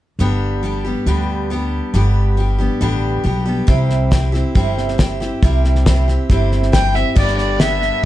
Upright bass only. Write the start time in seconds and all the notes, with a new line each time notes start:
0.19 G1
1.06 D2
1.94 G1
2.81 A1
3.25 B1
3.68 C2
4.56 G1
5.43 C2
6.30 G1
7.16 G1